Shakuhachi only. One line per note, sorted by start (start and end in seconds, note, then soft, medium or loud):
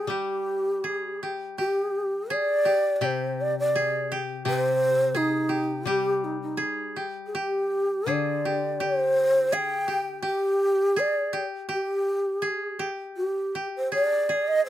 0.00 0.12 G#4 medium
0.11 1.23 G4 medium
1.59 2.34 G4 medium
2.32 2.96 D5 medium
2.96 3.06 D5 medium
3.05 3.42 C5 medium
3.41 3.58 D5 medium
3.59 4.09 D5 medium
4.49 5.18 C5 loud
5.16 5.89 D#4 medium
5.88 6.26 G4 medium
6.24 6.41 D#4 medium
6.42 6.94 D#4 medium
7.27 7.37 G#4 medium
7.36 8.13 G4 medium
8.11 8.84 D5 medium
8.83 9.55 C5 medium
9.53 10.24 G5 medium
10.25 11.00 G4 medium
10.99 11.43 D5 medium
11.71 12.77 G4 medium
13.17 13.69 G4 medium
13.76 13.92 C5 medium
13.94 14.50 D5 medium
14.48 14.64 D#5 loud